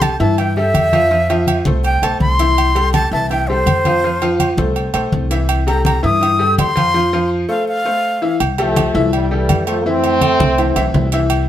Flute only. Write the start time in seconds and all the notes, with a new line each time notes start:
0.02 A5
0.21 A5
0.39 G5
0.57 E5
1.84 G5
2.03 A5
2.21 C6
2.94 A5
3.13 A5
3.30 G5
3.48 C5
5.68 A#5
5.86 A#5
6.05 D#6
6.59 C6
7.49 F5
7.68 F5